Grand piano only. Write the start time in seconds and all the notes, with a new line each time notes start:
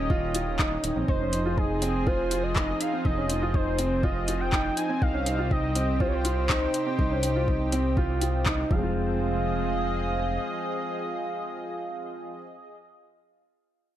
0.10 F4
0.34 F4
0.59 D#4
0.84 D#4
0.96 C4
1.08 D#4
1.21 C#4
1.33 D#4
1.45 F4
1.58 D#4
1.82 C4
2.07 F4
2.31 F4
2.56 D#4
2.80 D#4
2.93 C4
3.05 D#4
3.17 C#4
3.30 D#4
3.42 F4
3.54 D#4
3.79 C4
4.03 F4
4.28 F4
4.53 D#4
4.77 D#4
4.89 C4
5.01 D#4
5.14 C#4
5.26 D#4
5.38 F4
5.51 D#4
5.76 C4
6.00 F4
6.25 F4
6.50 D#4
6.74 D#4
6.87 C4
6.99 D#4
7.11 C#4
7.23 D#4
7.36 F4
7.48 D#4
7.73 C4
7.97 F4
8.22 F4
8.46 D#4
8.71 F3
8.75 G#3 C4
8.83 F4